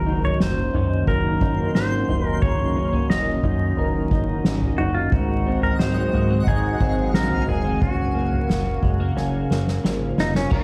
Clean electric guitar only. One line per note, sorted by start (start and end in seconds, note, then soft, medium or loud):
0.00 2.42 F#3 medium
0.00 0.06 D#4 soft
0.00 1.06 A#4 medium
0.06 0.73 D#4 medium
0.40 1.74 C#4 medium
0.74 1.41 D#4 medium
1.07 2.41 A#4 medium
1.42 2.08 D#4 medium
1.75 2.75 C#4 soft
2.09 2.76 D#4 medium
2.42 5.16 F#3 medium
2.42 3.77 A#4 medium
2.77 2.93 C#4 medium
2.93 3.43 D#4 soft
3.10 4.44 C#4 medium
3.44 4.11 D#4 medium
3.78 5.13 A#4 medium
4.11 4.79 D#4 medium
4.45 5.19 C#4 soft
4.79 5.13 D#4 medium
5.13 7.82 G#2 medium
5.13 6.46 D#4 medium
5.47 6.13 C4 medium
5.80 7.14 F#3 medium
6.14 6.30 A#3 medium
6.30 6.80 C4 soft
6.47 7.81 D#4 medium
6.81 7.48 C4 medium
7.14 8.86 F#3 medium
7.48 7.64 A#3 medium
7.64 7.88 C4 soft
7.82 9.16 C#4 medium
8.15 8.82 A#3 medium
8.83 9.00 G#3 medium
9.00 9.49 A#3 soft
9.17 10.52 C#4 medium
9.50 10.18 A#3 medium
9.84 10.58 F3 medium
10.18 10.64 A#3 medium
10.52 10.64 F#3 medium
10.52 10.64 A#4 medium